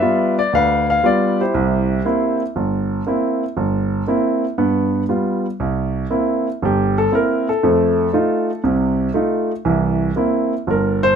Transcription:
Already playing: B4 D5 E5
0.02 G3 B3 F4
0.39 D5
0.53 D2 B4 D5 F5
0.90 F5
1.03 G3 B3 F4 D5
1.41 E4 G4 C5
1.54 C2
2.05 A#3 C4 E4
2.56 G1
3.07 A#3 C4 E4
3.57 G1
4.07 A#3 C4 E4
4.58 G2 B3
5.09 G3 B3 F4
5.60 C2
6.11 A#3 C4 E4
6.62 G1 G4
6.98 A4
7.12 A#3 C4 E4 A#4
7.49 A4
7.63 F2 A3
8.13 A3 D#4 F4
8.64 C2 C3
9.14 A3 D#4 F4
9.65 C2 E3
10.16 A#3 C4 E4
10.67 G1 A#4
11.03 C5

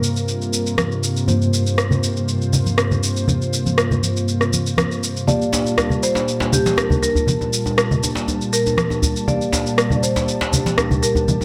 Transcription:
Already playing: G2 C3 A#3 F4 A#4 C5
0.03 shaker
0.17 shaker
0.28 shaker
0.42 shaker
0.53 shaker
0.67 shaker
0.78 cross-stick, high conga, shaker
0.92 shaker
1.04 shaker
1.17 shaker
1.28 G2 A#3 F4 C5, high conga, low conga, shaker
1.42 shaker
1.54 shaker
1.67 shaker
1.78 cross-stick, shaker
1.91 low conga, shaker
2.04 shaker
2.17 shaker
2.28 shaker
2.42 shaker
2.53 low conga, shaker
2.66 high conga, shaker
2.78 cross-stick, shaker
2.91 low conga, shaker
3.03 shaker
3.17 shaker
3.28 high conga, low conga, shaker
3.42 shaker
3.53 shaker
3.66 high conga, shaker
3.78 cross-stick, shaker
3.91 low conga, shaker
4.03 high conga, shaker
4.17 shaker
4.28 shaker
4.41 cross-stick, shaker
4.53 high conga, shaker
4.67 shaker
4.78 cross-stick, high conga, shaker
4.92 shaker
5.04 shaker
5.17 shaker
5.27 A#2 G3 A#3 G4 D5 F5 A5, high conga, low conga, shaker
5.42 shaker
5.53 djembe slap, djembe tone, shaker
5.66 shaker
5.78 cross-stick, djembe tone, shaker
5.90 low conga, shaker
6.03 C5, shaker
6.15 djembe slap, djembe tone, shaker
6.28 shaker
6.40 djembe slap, djembe tone, shaker
6.53 G4, low conga, shaker
6.66 djembe slap, high conga, shaker
6.77 A#4, cross-stick, djembe tone, shaker
6.90 djembe bass, low conga, shaker
7.03 A#4, djembe tone, shaker
7.15 djembe bass, shaker
7.27 high conga, low conga, shaker
7.41 djembe tone, shaker
7.53 shaker
7.66 djembe tone, shaker
7.78 cross-stick, shaker
7.91 low conga, shaker
8.03 djembe tone, shaker
8.15 djembe slap, shaker
8.28 djembe tone, shaker
8.42 shaker
8.53 A#4, shaker
8.66 djembe tone, shaker
8.77 cross-stick, high conga, shaker
8.90 djembe tone, shaker
9.03 djembe bass, shaker
9.16 shaker
9.28 A#3 G4 D5 F5 A5, djembe tone, high conga, low conga, shaker
9.42 shaker
9.52 djembe slap, djembe tone, shaker
9.67 shaker
9.78 cross-stick, shaker
9.90 djembe tone, low conga, shaker
9.96 D5
10.03 C5, shaker
10.16 djembe slap, djembe tone, shaker
10.29 shaker
10.41 djembe slap, shaker
10.52 djembe tone, low conga, shaker
10.66 djembe slap, high conga, shaker
10.78 cross-stick, djembe tone, shaker
10.91 low conga, djembe bass, shaker
11.03 A#4, shaker
11.15 djembe tone, djembe bass, shaker
11.28 high conga, low conga, shaker
11.41 djembe tone, shaker

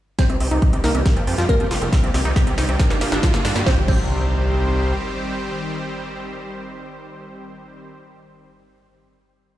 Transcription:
0.18 C3 D#3 G3 C4 D#4 G4 C5, kick, snare, closed hi-hat, riser
0.29 C2 C4, closed hi-hat
0.40 C2 C4, open hi-hat
0.51 C2 D#4, closed hi-hat
0.62 G4, kick, closed hi-hat
0.73 C2 C4, closed hi-hat
0.84 C2 A#3 D#4 A#4, snare, open hi-hat
0.95 C2 C4, closed hi-hat, high conga
1.06 F3 C4 F4, kick, snare, closed hi-hat
1.16 F2 C4, closed hi-hat
1.27 F2 C4, open hi-hat
1.38 F2 F4, snare, closed hi-hat
1.49 A#3 G4 A#4, kick, closed hi-hat
1.60 F2 C4, closed hi-hat
1.71 F1 F4, snare, open hi-hat
1.82 F1 C4, closed hi-hat, high conga
1.93 D#3 C4 D#4, kick, snare, closed hi-hat
2.03 C2 C4, closed hi-hat
2.14 C2 C4, snare, open hi-hat
2.25 C2 D#4, closed hi-hat
2.36 G4, kick, snare, closed hi-hat
2.47 C2 C4, closed hi-hat
2.58 C2 D#4, snare, open hi-hat
2.69 C2 C4, closed hi-hat, high conga
2.79 D3 A#3 F4, kick, snare, closed hi-hat
2.90 G1 A#3, snare, closed hi-hat
3.01 G1 A#3, snare, open hi-hat
3.12 G1 D4, snare, closed hi-hat, high conga
3.23 F4, kick, snare, closed hi-hat
3.34 G1 A#3, snare, closed hi-hat
3.45 G2 D4, snare, open hi-hat, high conga
3.56 G2 A#3, snare, closed hi-hat
3.66 C2 D#3 G3 C4 G4 C5, kick, snare, impact
3.88 C2 C4 C5, kick, crash

